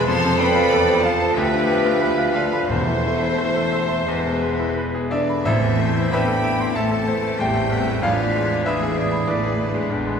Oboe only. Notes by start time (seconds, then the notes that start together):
0.07 A4
1.34 B4
2.70 C5
4.08 B4
5.46 A4
5.80 C5
6.12 G4
6.75 A4
7.38 C5
7.72 B4
8.68 G#4
8.98 G#4
9.30 B4
9.93 B4